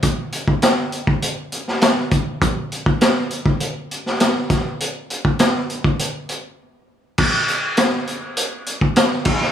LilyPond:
\new DrumStaff \with { instrumentName = "Drums" } \drummode { \time 4/4 \tempo 4 = 101 <hh bd>8 hh16 bd16 <hh sn>8 hh16 bd16 hh8 hh16 sn16 <hh sn>8 <hh bd>8 | <hh bd>8 hh16 bd16 <hh sn>8 hh16 bd16 hh8 hh16 sn16 <hh sn>8 <hh bd sn>8 | hh8 hh16 bd16 <hh sn>8 hh16 bd16 hh8 hh8 r4 | <cymc bd>8 hh8 <hh sn>8 hh8 hh8 hh16 bd16 <hh sn>8 <cymc bd>16 sn16 | }